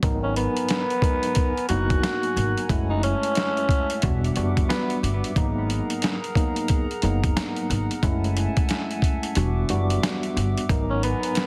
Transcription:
0.02 upright bass G#1, tine electric piano G#2 F#3 B3 D#4 A#4, analog synth pad A#4 F#5 G#5 A#5, kick, closed hi-hat
0.23 tenor saxophone C#4
0.36 tenor saxophone B3, closed hi-hat
0.57 closed hi-hat
0.69 snare, closed hi-hat
0.90 closed hi-hat
1.02 tine electric piano G#2 F#3 B3 D#4 A#4, kick, closed hi-hat
1.23 closed hi-hat
1.35 kick, closed hi-hat
1.57 closed hi-hat
1.69 upright bass F#1, tine electric piano G#2 F#3 A#3 B3 D#4, tenor saxophone F#4, closed hi-hat
1.90 kick, closed hi-hat
2.03 snare, closed hi-hat
2.23 closed hi-hat
2.36 upright bass G#1, closed hi-hat
2.58 closed hi-hat
2.69 upright bass F#1, tine electric piano F#2 G#3 A3 C#4 E4, analog synth pad E5 A5, kick, closed hi-hat
2.90 tenor saxophone D#4
3.03 tenor saxophone C#4, closed hi-hat
3.23 closed hi-hat
3.35 snare, closed hi-hat
3.57 closed hi-hat
3.69 kick, closed hi-hat
3.90 closed hi-hat
4.02 upright bass E1, tine electric piano E2 G3 B3 D4 F#4, analog synth pad G3 F#5 D6, kick, closed hi-hat
4.24 closed hi-hat
4.36 upright bass F#1, tine electric piano E2 G3 B3 D4 F#4, closed hi-hat
4.57 kick, closed hi-hat
4.69 tenor saxophone B3, snare, closed hi-hat
4.90 closed hi-hat
5.03 upright bass G1, closed hi-hat
5.24 closed hi-hat
5.36 upright bass G#1, tine electric piano G#2 F#3 A#3 B3 D#4, analog synth pad G#4 A#4 F#5 A#5, kick, closed hi-hat
5.70 closed hi-hat
5.90 closed hi-hat
6.02 snare, closed hi-hat
6.24 closed hi-hat
6.35 tine electric piano G#2 F#3 A#3 B3 D#4, kick, closed hi-hat
6.56 closed hi-hat
6.68 kick, closed hi-hat
6.91 closed hi-hat
7.02 upright bass F#1, tine electric piano G#2 F#3 A#3 B3 D#4, closed hi-hat
7.24 kick, closed hi-hat
7.37 snare, closed hi-hat
7.56 closed hi-hat
7.70 upright bass G#1, closed hi-hat
7.91 closed hi-hat
8.02 upright bass F#1, tine electric piano F#2 G#3 A3 C#4 E4, analog synth pad E5 G#5 A5, kick, closed hi-hat
8.24 closed hi-hat
8.37 closed hi-hat
8.57 kick, closed hi-hat
8.69 snare, closed hi-hat
8.91 closed hi-hat
9.02 kick, closed hi-hat
9.23 closed hi-hat
9.35 upright bass E1, tine electric piano E2 G3 B3 D4 F#4, analog synth pad G3 D6, closed hi-hat
9.69 upright bass F#1, tine electric piano E2 G3 B3 D4 F#4, closed hi-hat
9.90 closed hi-hat
10.03 snare, closed hi-hat
10.23 closed hi-hat
10.37 upright bass G1, closed hi-hat
10.58 closed hi-hat
10.68 upright bass G#1, tine electric piano G#2 F#3 B3 D#4 A#4, analog synth pad A#4 F#5 G#5 A#5, kick, closed hi-hat
10.90 tenor saxophone C#4
11.03 tenor saxophone B3, closed hi-hat
11.23 closed hi-hat
11.35 snare, closed hi-hat

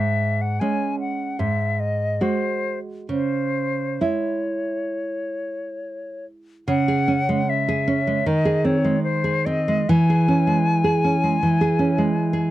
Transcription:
Already playing: nylon-string guitar G#2, flute E5
0.42 flute F#5
0.60 nylon-string guitar G#3 C#4, flute G#5
1.00 flute F#5
1.39 nylon-string guitar G#2, flute E5
1.80 flute D#5
2.21 nylon-string guitar G#3 F#4, flute C5
3.09 nylon-string guitar C#3, flute C5
4.01 nylon-string guitar G#3 E4, flute C#5
6.68 nylon-string guitar C#3, flute F#5
6.88 nylon-string guitar G#4
7.08 nylon-string guitar C#4
7.29 nylon-string guitar G#3
7.49 flute E5
7.68 nylon-string guitar G#4
7.88 nylon-string guitar C#4
8.07 nylon-string guitar G#3
8.26 nylon-string guitar D#3, flute D#5
8.45 nylon-string guitar G#4
8.65 nylon-string guitar C4, flute C#5
8.85 nylon-string guitar G#3
9.04 flute C5
9.24 nylon-string guitar G#4
9.46 nylon-string guitar C4, flute D#5
9.68 nylon-string guitar G#3
9.89 nylon-string guitar E3, flute G#5
10.10 nylon-string guitar G#4
10.28 nylon-string guitar C#4
10.47 nylon-string guitar G#3
10.84 nylon-string guitar G#4
11.04 nylon-string guitar C#4
11.24 nylon-string guitar G#3
11.43 nylon-string guitar E3
11.61 nylon-string guitar G#4
11.79 nylon-string guitar C#4
11.98 nylon-string guitar G#3
12.33 nylon-string guitar G#4

